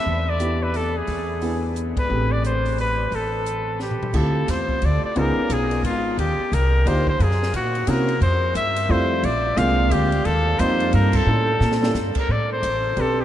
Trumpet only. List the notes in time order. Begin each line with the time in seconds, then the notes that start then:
Already playing: E5
0.29 D5
0.63 B4
0.76 A4
0.97 G#4
1.99 B4
2.32 D5
2.46 C5
2.81 B4
3.15 A4
3.82 G4
4.16 A4
4.50 C5
4.85 D5
5.05 D5
5.18 A#4
5.53 G#4
5.85 F4
6.19 G4
6.54 A#4
6.88 C5
7.09 C5
7.22 G#4
7.56 F#4
7.90 A#4
8.22 C5
8.57 E5
8.91 C5
9.25 D5
9.58 F5
9.92 G4
10.25 A4
10.59 C5
10.95 A#4
11.16 A4
12.19 A#4
12.31 D5
12.53 C5
13.01 A4
13.21 G4